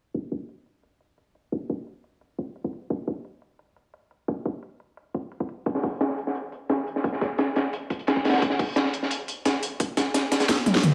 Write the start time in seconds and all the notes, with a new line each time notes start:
0.14 kick, closed hi-hat
0.32 kick, closed hi-hat
0.49 closed hi-hat
0.66 closed hi-hat
0.83 closed hi-hat
1.01 closed hi-hat
1.18 closed hi-hat
1.35 closed hi-hat
1.52 kick, closed hi-hat
1.70 kick, closed hi-hat
1.87 closed hi-hat
2.04 closed hi-hat
2.21 closed hi-hat
2.38 kick, closed hi-hat
2.56 closed hi-hat
2.64 kick
2.73 closed hi-hat
2.90 kick, closed hi-hat
3.07 kick, closed hi-hat
3.25 closed hi-hat
3.42 closed hi-hat
3.59 closed hi-hat
3.76 closed hi-hat
3.94 closed hi-hat
4.11 closed hi-hat
4.28 kick, closed hi-hat
4.45 kick, closed hi-hat
4.63 closed hi-hat
4.80 closed hi-hat
4.97 closed hi-hat
5.14 kick, closed hi-hat
5.32 closed hi-hat
5.40 kick
5.49 closed hi-hat
5.66 kick, closed hi-hat
5.75 snare
5.83 kick, closed hi-hat, open hi-hat
6.01 snare, closed hi-hat
6.09 snare
6.18 closed hi-hat
6.27 snare
6.35 closed hi-hat
6.52 closed hi-hat
6.69 snare, closed hi-hat
6.87 closed hi-hat
6.96 snare
7.04 kick, closed hi-hat
7.12 snare
7.21 kick, snare, closed hi-hat
7.38 snare, closed hi-hat
7.56 snare, closed hi-hat
7.73 closed hi-hat
7.90 kick, closed hi-hat
7.99 closed hi-hat
8.07 snare, closed hi-hat
8.16 kick, snare
8.25 snare, closed hi-hat
8.29 snare, closed hi-hat
8.34 snare, closed hi-hat
8.37 snare, closed hi-hat
8.42 kick, closed hi-hat
8.50 snare
8.59 kick, closed hi-hat, open hi-hat
8.76 snare, closed hi-hat
8.85 snare
8.93 closed hi-hat
9.03 snare
9.11 closed hi-hat
9.28 closed hi-hat
9.45 snare, closed hi-hat
9.63 closed hi-hat
9.80 kick, closed hi-hat
9.97 kick, snare, closed hi-hat
10.14 snare, closed hi-hat
10.32 snare, closed hi-hat
10.40 snare, closed hi-hat
10.49 snare, closed hi-hat
10.66 kick, snare, closed hi-hat, high tom
10.74 snare, closed hi-hat
10.83 closed hi-hat, mid tom
10.91 snare